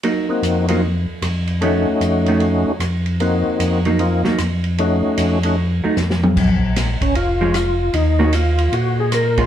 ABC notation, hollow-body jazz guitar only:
X:1
M:4/4
L:1/8
Q:"Swing" 1/4=152
K:Bbm
V:1 name="Hollow-body jazz guitar"
[G,B,E] z2 [G,B,E] z4 | [E,=A,D] z2 [E,A,D] z4 | z3 [G,B,E] z [G,B,E] z2 | z4 z [G,=A,E] z2 |
z4 z [F,A,D] z2 | z [E,B,DG] z4 z [A,DF] |]